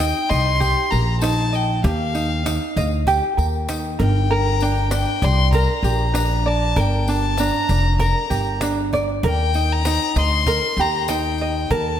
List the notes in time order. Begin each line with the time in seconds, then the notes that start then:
Already playing: D#2 G4 G5
0.00 D#4, cajon slap, tambourine
0.29 C2 D#5 C6, cajon bass, tambourine
0.46 cajon slap
0.60 G4, cajon bass, tambourine
0.91 A#1 A#4 A#5, tambourine
1.08 cajon slap
1.21 D#4 A5, cajon slap, tambourine
1.53 D#5 G5, cajon slap, tambourine
1.70 cajon slap
1.84 D#2 G4 F5, cajon bass, tambourine
2.15 D#4, cajon slap, tambourine
2.30 cajon slap
2.46 D#4, cajon slap, tambourine
2.76 D2 D#5, cajon bass, tambourine
2.93 cajon slap
3.07 G4, cajon bass, tambourine
3.37 D#2 A#4, tambourine
3.53 cajon slap
3.68 D#4, cajon slap, tambourine
3.99 G1 A#4 G5, cajon bass, cajon slap
4.15 cajon slap
4.30 A#4 A#5, cajon slap
4.60 D4 G5, tambourine
4.76 cajon slap
4.91 D4 G5, cajon slap, tambourine
5.22 C2 D5 C6, cajon bass, tambourine
5.53 A#4 A#5, cajon bass, tambourine
5.83 A#1 G4, tambourine
5.99 cajon slap
6.14 D4, cajon slap, tambourine
6.46 D5 A5, cajon slap
6.61 cajon slap
6.76 G1 A#4 G5, cajon bass, tambourine
7.07 D4 A5, cajon slap, tambourine
7.22 cajon slap
7.37 D4 A#5, cajon slap, tambourine
7.69 F1 D5, cajon bass, tambourine
7.84 cajon slap
7.99 A#4 A#5, cajon bass, tambourine
8.30 G1 G4, cajon bass, tambourine
8.46 cajon slap
8.61 D4, cajon slap, tambourine
8.93 D5, cajon bass, tambourine
9.08 cajon slap
9.23 D#2 A#4, cajon bass
9.28 G5
9.54 D#4, cajon slap, tambourine
9.69 A#5, cajon slap
9.85 D#4, cajon slap, tambourine
10.16 D2 D#5 C6, cajon bass, tambourine
10.32 cajon slap
10.47 A#4, cajon bass, tambourine
10.77 D#2 G4 A#5, tambourine
10.94 cajon slap
11.08 D#4 G5, cajon slap, tambourine
11.38 D#5, tambourine
11.55 cajon slap
11.70 D#2 A#4 A5, cajon bass